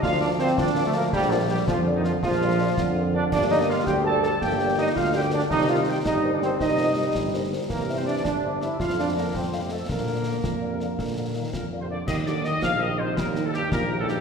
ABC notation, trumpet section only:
X:1
M:6/8
L:1/16
Q:3/8=110
K:Bb
V:1 name="Trumpet section"
f2 d2 c2 d3 A B2 | G2 F2 G2 F3 E F2 | F8- F2 d2 | d2 e2 f2 g2 a2 a2 |
g4 e2 f2 g2 d2 | e2 f2 g2 e3 d c2 | e8 z4 | B3 c d2 d4 =e2 |
f2 d2 B2 c3 G A2 | B12- | B6 B3 c d2 | e2 d2 e2 f2 e2 c2 |
B3 A G2 B3 A G2 |]